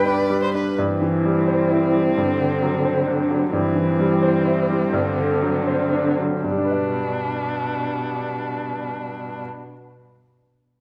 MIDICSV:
0, 0, Header, 1, 5, 480
1, 0, Start_track
1, 0, Key_signature, 1, "major"
1, 0, Tempo, 479233
1, 780, Time_signature, 6, 3, 24, 8
1, 1248, Tempo, 459067
1, 5088, Tempo, 505476
1, 6528, Tempo, 492611
1, 10786, End_track
2, 0, Start_track
2, 0, Title_t, "Violin"
2, 0, Program_c, 0, 40
2, 57, Note_on_c, 0, 74, 39
2, 396, Note_off_c, 0, 74, 0
2, 429, Note_on_c, 0, 72, 37
2, 536, Note_off_c, 0, 72, 0
2, 542, Note_on_c, 0, 71, 32
2, 777, Note_off_c, 0, 71, 0
2, 10786, End_track
3, 0, Start_track
3, 0, Title_t, "Violin"
3, 0, Program_c, 1, 40
3, 778, Note_on_c, 1, 60, 43
3, 3585, Note_off_c, 1, 60, 0
3, 3638, Note_on_c, 1, 60, 47
3, 6285, Note_off_c, 1, 60, 0
3, 6526, Note_on_c, 1, 62, 39
3, 9457, Note_off_c, 1, 62, 0
3, 10786, End_track
4, 0, Start_track
4, 0, Title_t, "Grand piano"
4, 0, Program_c, 2, 0
4, 0, Control_c, 2, 64, 127
4, 0, Note_on_c, 2, 43, 36
4, 0, Note_on_c, 2, 55, 28
4, 0, Note_on_c, 2, 62, 28
4, 0, Note_on_c, 2, 71, 32
4, 58, Note_off_c, 2, 62, 0
4, 58, Note_on_c, 2, 62, 26
4, 59, Note_off_c, 2, 71, 0
4, 59, Note_on_c, 2, 71, 31
4, 274, Note_off_c, 2, 62, 0
4, 275, Note_off_c, 2, 71, 0
4, 298, Note_off_c, 2, 55, 0
4, 298, Note_on_c, 2, 55, 27
4, 303, Note_on_c, 2, 71, 28
4, 518, Note_off_c, 2, 55, 0
4, 520, Note_off_c, 2, 71, 0
4, 545, Note_on_c, 2, 62, 24
4, 552, Note_on_c, 2, 71, 29
4, 740, Note_off_c, 2, 43, 0
4, 760, Note_off_c, 2, 62, 0
4, 764, Note_off_c, 2, 71, 0
4, 787, Note_on_c, 2, 43, 40
4, 801, Control_c, 2, 64, 0
4, 989, Control_c, 2, 64, 127
4, 1017, Note_on_c, 2, 52, 30
4, 1255, Note_on_c, 2, 55, 32
4, 1393, Note_off_c, 2, 52, 0
4, 1490, Note_on_c, 2, 72, 32
4, 1635, Note_off_c, 2, 55, 0
4, 1732, Note_on_c, 2, 64, 32
4, 1869, Note_off_c, 2, 72, 0
4, 1975, Note_on_c, 2, 55, 31
4, 2110, Note_off_c, 2, 64, 0
4, 2165, Note_off_c, 2, 43, 0
4, 2209, Note_off_c, 2, 55, 0
4, 2219, Note_on_c, 2, 43, 39
4, 2226, Control_c, 2, 64, 0
4, 2369, Control_c, 2, 64, 127
4, 2451, Note_on_c, 2, 50, 33
4, 2689, Note_on_c, 2, 54, 31
4, 2824, Note_off_c, 2, 50, 0
4, 2926, Note_on_c, 2, 72, 33
4, 3059, Note_off_c, 2, 54, 0
4, 3157, Note_on_c, 2, 62, 31
4, 3299, Note_off_c, 2, 72, 0
4, 3397, Note_on_c, 2, 54, 34
4, 3536, Note_off_c, 2, 62, 0
4, 3593, Note_off_c, 2, 43, 0
4, 3632, Note_off_c, 2, 54, 0
4, 3637, Note_on_c, 2, 43, 39
4, 3649, Control_c, 2, 64, 0
4, 3816, Control_c, 2, 64, 127
4, 3878, Note_on_c, 2, 52, 33
4, 4123, Note_on_c, 2, 55, 36
4, 4257, Note_off_c, 2, 52, 0
4, 4363, Note_on_c, 2, 72, 40
4, 4502, Note_off_c, 2, 55, 0
4, 4601, Note_on_c, 2, 64, 35
4, 4746, Note_off_c, 2, 72, 0
4, 4861, Note_on_c, 2, 55, 39
4, 4992, Note_off_c, 2, 64, 0
4, 5050, Note_off_c, 2, 43, 0
4, 5098, Note_off_c, 2, 55, 0
4, 5101, Note_on_c, 2, 43, 48
4, 5108, Control_c, 2, 64, 0
4, 5283, Control_c, 2, 64, 127
4, 5338, Note_on_c, 2, 50, 34
4, 5568, Note_on_c, 2, 54, 34
4, 5703, Note_off_c, 2, 50, 0
4, 5799, Note_on_c, 2, 72, 35
4, 5943, Note_off_c, 2, 54, 0
4, 6042, Note_on_c, 2, 62, 31
4, 6187, Note_off_c, 2, 72, 0
4, 6292, Note_on_c, 2, 54, 29
4, 6437, Note_off_c, 2, 62, 0
4, 6497, Note_off_c, 2, 43, 0
4, 6532, Note_off_c, 2, 54, 0
4, 6534, Note_on_c, 2, 43, 28
4, 6549, Control_c, 2, 64, 0
4, 6603, Note_on_c, 2, 55, 28
4, 6666, Note_on_c, 2, 62, 28
4, 6734, Control_c, 2, 64, 127
4, 6737, Note_on_c, 2, 71, 29
4, 6802, Note_on_c, 2, 74, 28
4, 9425, Control_c, 2, 64, 0
4, 9464, Note_off_c, 2, 43, 0
4, 9533, Note_off_c, 2, 55, 0
4, 9597, Note_off_c, 2, 62, 0
4, 9668, Note_off_c, 2, 71, 0
4, 9733, Note_off_c, 2, 74, 0
4, 10786, End_track
5, 0, Start_track
5, 0, Title_t, "Cello"
5, 0, Program_c, 3, 42
5, 0, Note_on_c, 3, 71, 47
5, 413, Note_off_c, 3, 71, 0
5, 779, Note_on_c, 3, 52, 43
5, 2161, Note_off_c, 3, 52, 0
5, 2199, Note_on_c, 3, 50, 39
5, 3597, Note_off_c, 3, 50, 0
5, 3632, Note_on_c, 3, 52, 45
5, 5060, Note_off_c, 3, 52, 0
5, 5082, Note_on_c, 3, 50, 51
5, 6292, Note_off_c, 3, 50, 0
5, 6538, Note_on_c, 3, 47, 36
5, 9468, Note_off_c, 3, 47, 0
5, 10786, End_track
0, 0, End_of_file